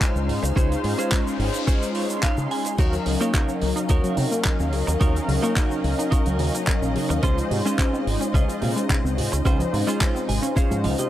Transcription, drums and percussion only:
0.01 kick medium
0.01 clap loud
0.01 closed hi-hat medium
0.01 shaker medium
0.16 shaker soft
0.29 open hi-hat medium
0.43 closed hi-hat medium
0.43 shaker medium
0.57 kick loud
0.57 closed hi-hat medium
0.57 shaker medium
0.72 closed hi-hat soft
0.72 shaker soft
0.84 open hi-hat loud
0.99 closed hi-hat medium
0.99 shaker medium
1.12 kick loud
1.12 clap loud
1.12 closed hi-hat medium
1.12 shaker medium
1.28 shaker medium
1.40 open hi-hat medium
1.54 closed hi-hat medium
1.54 shaker medium
1.68 kick loud
1.68 closed hi-hat medium
1.68 shaker medium
1.83 closed hi-hat medium
1.83 shaker soft
1.95 open hi-hat loud
2.10 closed hi-hat medium
2.10 shaker medium
2.23 kick loud
2.23 clap loud
2.23 closed hi-hat medium
2.23 shaker medium
2.37 shaker medium
2.51 open hi-hat loud
2.65 closed hi-hat medium
2.65 shaker medium
2.78 kick loud
2.78 closed hi-hat medium
2.78 crash medium
2.78 shaker medium
2.93 closed hi-hat medium
2.93 shaker soft
3.06 open hi-hat loud
3.21 closed hi-hat medium
3.21 shaker medium
3.34 kick loud
3.34 clap loud
3.34 closed hi-hat medium
3.34 shaker medium
3.49 shaker soft
3.62 open hi-hat loud
3.77 closed hi-hat medium
3.77 shaker medium
3.89 kick loud
3.89 closed hi-hat medium
3.89 shaker medium
4.04 closed hi-hat medium
4.04 shaker medium
4.17 open hi-hat loud
4.32 closed hi-hat medium
4.32 shaker medium
4.45 kick loud
4.45 clap loud
4.45 closed hi-hat loud
4.45 shaker medium
4.60 shaker soft
4.73 open hi-hat loud
4.88 closed hi-hat medium
4.88 shaker medium
5.01 kick loud
5.01 closed hi-hat medium
5.01 shaker medium
5.16 closed hi-hat medium
5.16 shaker soft
5.29 open hi-hat loud
5.43 closed hi-hat medium
5.43 shaker medium
5.56 kick loud
5.56 clap loud
5.56 closed hi-hat medium
5.56 shaker medium
5.71 shaker soft
5.84 open hi-hat medium
5.99 closed hi-hat medium
5.99 shaker medium
6.12 kick loud
6.12 closed hi-hat medium
6.12 shaker medium
6.26 closed hi-hat medium
6.26 shaker medium
6.39 open hi-hat loud
6.55 closed hi-hat medium
6.55 shaker medium
6.67 kick loud
6.67 clap loud
6.67 closed hi-hat medium
6.67 shaker medium
6.83 shaker soft
6.96 open hi-hat loud
7.10 closed hi-hat medium
7.10 shaker medium
7.23 kick loud
7.23 closed hi-hat medium
7.23 shaker medium
7.38 closed hi-hat medium
7.38 shaker soft
7.51 open hi-hat loud
7.66 closed hi-hat medium
7.66 shaker medium
7.79 kick loud
7.79 clap loud
7.79 closed hi-hat medium
7.79 shaker medium
7.94 shaker soft
8.07 open hi-hat loud
8.21 closed hi-hat medium
8.21 shaker medium
8.34 kick loud
8.34 closed hi-hat medium
8.34 shaker medium
8.49 closed hi-hat soft
8.49 shaker medium
8.62 open hi-hat loud
8.77 closed hi-hat medium
8.77 shaker medium
8.90 kick loud
8.90 clap loud
8.90 closed hi-hat medium
8.90 shaker medium
9.06 shaker soft
9.18 open hi-hat loud
9.33 closed hi-hat medium
9.33 shaker medium
9.46 kick loud
9.46 closed hi-hat medium
9.46 shaker medium
9.60 closed hi-hat soft
9.60 shaker soft
9.74 open hi-hat loud
9.88 closed hi-hat medium
9.88 shaker medium
10.01 kick loud
10.01 clap loud
10.01 closed hi-hat medium
10.01 shaker medium
10.16 shaker medium
10.29 open hi-hat loud
10.43 closed hi-hat medium
10.43 shaker medium
10.57 kick loud
10.57 closed hi-hat medium
10.57 shaker medium
10.71 closed hi-hat medium
10.71 shaker medium
10.84 open hi-hat loud
10.98 closed hi-hat medium
10.98 shaker medium

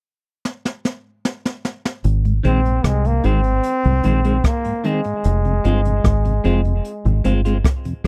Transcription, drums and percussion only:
0.45 snare medium
0.65 snare medium
0.85 snare medium
1.25 snare medium
1.45 snare medium
1.65 snare medium
1.85 snare loud
2.04 closed hi-hat medium
2.25 closed hi-hat soft
2.44 closed hi-hat medium
2.65 closed hi-hat medium
2.84 kick loud
2.84 cross-stick loud
2.84 closed hi-hat medium
3.04 closed hi-hat medium
3.24 closed hi-hat medium
3.43 closed hi-hat medium
3.63 closed hi-hat medium
3.84 closed hi-hat soft
4.03 closed hi-hat medium
4.24 closed hi-hat medium
4.44 kick loud
4.44 cross-stick loud
4.44 closed hi-hat loud
4.64 closed hi-hat medium
4.84 closed hi-hat medium
5.04 closed hi-hat medium
5.24 closed hi-hat medium
5.45 closed hi-hat soft
5.64 closed hi-hat medium
5.85 closed hi-hat medium
6.04 kick loud
6.04 cross-stick loud
6.04 closed hi-hat medium
6.25 closed hi-hat medium
6.44 closed hi-hat medium
6.64 closed hi-hat soft
6.84 closed hi-hat medium
7.05 closed hi-hat soft
7.24 closed hi-hat medium
7.45 closed hi-hat medium
7.64 kick loud
7.64 cross-stick loud
7.64 closed hi-hat loud
7.85 closed hi-hat medium

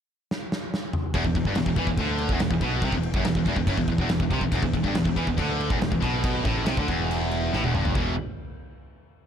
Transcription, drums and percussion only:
0.31 snare medium
0.52 snare medium
0.74 snare medium
0.93 mid tom medium
1.14 kick loud
1.14 crash medium
1.25 kick medium
1.35 kick medium
1.35 crash medium
1.45 kick medium
1.55 snare loud
1.55 crash medium
1.66 kick loud
1.76 kick medium
1.76 crash medium
1.87 kick medium
1.97 kick medium
1.97 crash medium
2.18 crash medium
2.29 kick loud
2.40 snare loud
2.40 crash medium
2.51 kick loud
2.61 kick medium
2.61 crash medium
2.82 kick loud
2.82 crash medium
2.92 kick medium
3.03 crash medium
3.14 kick loud
3.24 snare loud
3.24 crash medium
3.35 kick medium
3.46 kick medium
3.46 crash medium
3.56 kick medium
3.67 kick loud
3.67 crash medium
3.77 kick medium
3.88 kick medium
3.88 crash medium
3.98 kick medium
4.09 snare loud
4.09 crash medium
4.20 kick loud
4.31 kick medium
4.31 crash medium
4.41 kick medium
4.52 kick loud
4.52 crash medium
4.63 kick medium
4.74 kick medium
4.74 crash medium
4.84 kick medium
4.95 snare loud
4.95 crash medium
5.05 kick medium
5.16 kick medium
5.16 crash medium
5.27 kick medium
5.38 kick loud
5.38 crash medium
5.60 crash medium
5.70 kick loud
5.81 snare loud
5.81 crash medium
5.92 kick loud
6.02 kick medium
6.02 crash medium
6.24 kick loud
6.24 crash medium
6.45 kick loud
6.45 crash medium
6.66 snare loud
6.66 crash medium
6.77 kick loud
6.88 kick medium
6.88 crash medium
7.11 crash medium
7.31 crash medium
7.53 snare medium
7.64 high tom medium
7.75 mid tom medium
7.85 floor tom loud
7.95 kick loud

